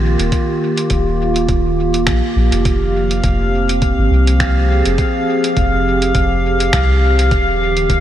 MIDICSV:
0, 0, Header, 1, 5, 480
1, 0, Start_track
1, 0, Key_signature, -4, "minor"
1, 0, Tempo, 582524
1, 264, Time_signature, 4, 2, 24, 8
1, 6594, End_track
2, 0, Start_track
2, 0, Title_t, "Synth texture"
2, 0, Program_c, 0, 99
2, 2182, Note_on_c, 0, 77, 84
2, 6594, Note_off_c, 0, 77, 0
2, 6594, End_track
3, 0, Start_track
3, 0, Title_t, "Ambient pad"
3, 0, Program_c, 1, 92
3, 0, Note_on_c, 1, 51, 77
3, 0, Note_on_c, 1, 58, 80
3, 0, Note_on_c, 1, 65, 71
3, 0, Note_on_c, 1, 67, 74
3, 2186, Note_off_c, 1, 51, 0
3, 2190, Note_on_c, 1, 53, 78
3, 2584, Note_on_c, 1, 60, 77
3, 3049, Note_off_c, 1, 65, 0
3, 3689, Note_on_c, 1, 68, 73
3, 3733, Note_off_c, 1, 58, 0
3, 6022, Note_off_c, 1, 68, 0
3, 6027, Note_off_c, 1, 53, 0
3, 6033, Note_on_c, 1, 51, 84
3, 6255, Note_on_c, 1, 58, 85
3, 6594, Note_off_c, 1, 51, 0
3, 6594, Note_off_c, 1, 58, 0
3, 6594, Note_off_c, 1, 60, 0
3, 6594, Note_off_c, 1, 67, 0
3, 6594, End_track
4, 0, Start_track
4, 0, Title_t, "Sub bass"
4, 0, Program_c, 2, 38
4, 0, Note_on_c, 2, 34, 80
4, 133, Note_off_c, 2, 34, 0
4, 159, Note_on_c, 2, 27, 83
4, 251, Note_off_c, 2, 27, 0
4, 745, Note_on_c, 2, 27, 102
4, 1204, Note_off_c, 2, 27, 0
4, 1224, Note_on_c, 2, 27, 95
4, 1706, Note_on_c, 2, 34, 88
4, 1719, Note_off_c, 2, 27, 0
4, 1825, Note_off_c, 2, 34, 0
4, 1945, Note_on_c, 2, 34, 96
4, 2064, Note_off_c, 2, 34, 0
4, 2079, Note_on_c, 2, 29, 86
4, 2643, Note_off_c, 2, 29, 0
4, 2667, Note_on_c, 2, 29, 101
4, 3255, Note_off_c, 2, 29, 0
4, 3282, Note_on_c, 2, 32, 89
4, 3373, Note_off_c, 2, 32, 0
4, 3385, Note_on_c, 2, 36, 82
4, 3974, Note_off_c, 2, 36, 0
4, 4005, Note_on_c, 2, 29, 84
4, 4094, Note_off_c, 2, 29, 0
4, 4586, Note_on_c, 2, 29, 100
4, 5045, Note_off_c, 2, 29, 0
4, 5067, Note_on_c, 2, 29, 97
4, 5525, Note_off_c, 2, 29, 0
4, 5548, Note_on_c, 2, 36, 91
4, 6027, Note_on_c, 2, 27, 103
4, 6039, Note_off_c, 2, 36, 0
4, 6485, Note_off_c, 2, 27, 0
4, 6508, Note_on_c, 2, 27, 105
4, 6594, Note_off_c, 2, 27, 0
4, 6594, End_track
5, 0, Start_track
5, 0, Title_t, "Drums"
5, 161, Note_on_c, 9, 42, 51
5, 243, Note_off_c, 9, 42, 0
5, 264, Note_on_c, 9, 42, 41
5, 265, Note_on_c, 9, 36, 98
5, 346, Note_off_c, 9, 42, 0
5, 347, Note_off_c, 9, 36, 0
5, 638, Note_on_c, 9, 42, 54
5, 721, Note_off_c, 9, 42, 0
5, 741, Note_on_c, 9, 42, 43
5, 745, Note_on_c, 9, 36, 102
5, 823, Note_off_c, 9, 42, 0
5, 827, Note_off_c, 9, 36, 0
5, 1119, Note_on_c, 9, 42, 54
5, 1201, Note_off_c, 9, 42, 0
5, 1224, Note_on_c, 9, 42, 40
5, 1226, Note_on_c, 9, 36, 96
5, 1306, Note_off_c, 9, 42, 0
5, 1308, Note_off_c, 9, 36, 0
5, 1599, Note_on_c, 9, 42, 55
5, 1682, Note_off_c, 9, 42, 0
5, 1703, Note_on_c, 9, 26, 89
5, 1703, Note_on_c, 9, 42, 43
5, 1707, Note_on_c, 9, 36, 98
5, 1785, Note_off_c, 9, 26, 0
5, 1785, Note_off_c, 9, 42, 0
5, 1789, Note_off_c, 9, 36, 0
5, 2079, Note_on_c, 9, 42, 54
5, 2161, Note_off_c, 9, 42, 0
5, 2185, Note_on_c, 9, 42, 43
5, 2187, Note_on_c, 9, 36, 102
5, 2268, Note_off_c, 9, 42, 0
5, 2270, Note_off_c, 9, 36, 0
5, 2561, Note_on_c, 9, 42, 55
5, 2644, Note_off_c, 9, 42, 0
5, 2666, Note_on_c, 9, 42, 43
5, 2667, Note_on_c, 9, 36, 103
5, 2749, Note_off_c, 9, 36, 0
5, 2749, Note_off_c, 9, 42, 0
5, 3043, Note_on_c, 9, 42, 54
5, 3126, Note_off_c, 9, 42, 0
5, 3146, Note_on_c, 9, 42, 44
5, 3148, Note_on_c, 9, 36, 106
5, 3228, Note_off_c, 9, 42, 0
5, 3230, Note_off_c, 9, 36, 0
5, 3522, Note_on_c, 9, 42, 55
5, 3604, Note_off_c, 9, 42, 0
5, 3626, Note_on_c, 9, 26, 90
5, 3626, Note_on_c, 9, 42, 43
5, 3627, Note_on_c, 9, 36, 106
5, 3709, Note_off_c, 9, 26, 0
5, 3709, Note_off_c, 9, 42, 0
5, 3710, Note_off_c, 9, 36, 0
5, 4000, Note_on_c, 9, 42, 57
5, 4083, Note_off_c, 9, 42, 0
5, 4105, Note_on_c, 9, 42, 42
5, 4108, Note_on_c, 9, 36, 108
5, 4187, Note_off_c, 9, 42, 0
5, 4190, Note_off_c, 9, 36, 0
5, 4483, Note_on_c, 9, 42, 54
5, 4565, Note_off_c, 9, 42, 0
5, 4586, Note_on_c, 9, 42, 44
5, 4587, Note_on_c, 9, 36, 107
5, 4669, Note_off_c, 9, 42, 0
5, 4670, Note_off_c, 9, 36, 0
5, 4960, Note_on_c, 9, 42, 54
5, 5042, Note_off_c, 9, 42, 0
5, 5064, Note_on_c, 9, 42, 46
5, 5067, Note_on_c, 9, 36, 113
5, 5147, Note_off_c, 9, 42, 0
5, 5149, Note_off_c, 9, 36, 0
5, 5441, Note_on_c, 9, 42, 55
5, 5523, Note_off_c, 9, 42, 0
5, 5545, Note_on_c, 9, 26, 93
5, 5545, Note_on_c, 9, 42, 44
5, 5547, Note_on_c, 9, 36, 109
5, 5627, Note_off_c, 9, 26, 0
5, 5627, Note_off_c, 9, 42, 0
5, 5629, Note_off_c, 9, 36, 0
5, 5924, Note_on_c, 9, 42, 55
5, 6007, Note_off_c, 9, 42, 0
5, 6026, Note_on_c, 9, 42, 41
5, 6027, Note_on_c, 9, 36, 107
5, 6108, Note_off_c, 9, 42, 0
5, 6109, Note_off_c, 9, 36, 0
5, 6400, Note_on_c, 9, 42, 53
5, 6482, Note_off_c, 9, 42, 0
5, 6507, Note_on_c, 9, 36, 113
5, 6507, Note_on_c, 9, 42, 44
5, 6589, Note_off_c, 9, 42, 0
5, 6590, Note_off_c, 9, 36, 0
5, 6594, End_track
0, 0, End_of_file